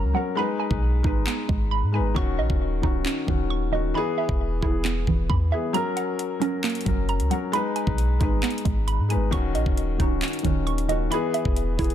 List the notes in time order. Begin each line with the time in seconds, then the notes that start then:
Already playing: F#3 A#3 C#4 A#4 F#5 A#5
0.04 C#2
0.13 F#3 C#4 A#4 F#5
0.35 G#3 D#4 B4 B5
0.60 G#5
0.71 B1, kick
1.03 G#1 G#3 D#4 B4, kick
1.27 B3, clap
1.49 G#1 G#3, kick
1.71 B5
1.83 G#2
1.92 G#3 D#4 B4 G#5
1.99 G#1
2.14 D#1 D#3 C#4 F#4 C#6, kick
2.39 A#1 D#5
2.50 D#1, kick
2.82 C#1 D#3 C#4 D#4 F#4, kick
3.05 C#4, clap
3.26 D#1 D#3 C#4 F#4, kick
3.50 C#6
3.71 D#3 C#4 F#4 D#5
3.94 E3 B3 G#4 B5
4.18 E5
4.29 E1, kick
4.61 E1 E3 B3 E4 G#4, kick
4.85 B3, clap
5.07 E1 E3, kick
5.30 E2 B5, kick
5.51 E3 B3 G#4 E5
5.73 F#3 C#4 A#4 A#5, closed hi-hat
5.97 F#5, closed hi-hat
6.19 closed hi-hat
6.40 F#3 C#4 A#4, closed hi-hat
6.64 A#3, clap, closed hi-hat
6.70 closed hi-hat
6.75 closed hi-hat
6.81 closed hi-hat
6.85 F#1 F#3 C#4 A#4, kick, closed hi-hat
7.09 A#5, closed hi-hat
7.20 C#2, closed hi-hat
7.30 F#3 C#4 A#4 F#5, closed hi-hat
7.52 G#3 D#4 B4 B5, closed hi-hat
7.76 G#5, closed hi-hat
7.87 B1, kick
7.98 closed hi-hat
8.20 G#1 G#3 D#4 B4, kick, closed hi-hat
8.43 B3, clap, closed hi-hat
8.50 closed hi-hat
8.58 closed hi-hat
8.65 G#1 G#3, kick, closed hi-hat
8.88 B5, closed hi-hat
8.99 G#2
9.09 G#3 D#4 B4 G#5, closed hi-hat
9.16 G#1
9.31 D#1 D#3 C#4 F#4 C#6, kick, closed hi-hat
9.55 A#1 D#5, closed hi-hat
9.66 D#1, kick
9.77 closed hi-hat
9.98 C#1 D#3 C#4 D#4 F#4, kick, closed hi-hat
10.22 C#4, clap, closed hi-hat
10.28 closed hi-hat
10.33 closed hi-hat
10.39 D#3, closed hi-hat
10.44 D#1 D#3 C#4 F#4, kick, closed hi-hat
10.67 C#6, closed hi-hat
10.78 closed hi-hat
10.88 D#3 C#4 F#4 D#5, closed hi-hat
11.10 E3 B3 G#4 B5, closed hi-hat
11.34 E5, closed hi-hat
11.45 E1, kick
11.56 closed hi-hat
11.77 E1 E3 B3 E4 G#4, kick, closed hi-hat, open hi-hat
11.84 closed hi-hat
11.90 closed hi-hat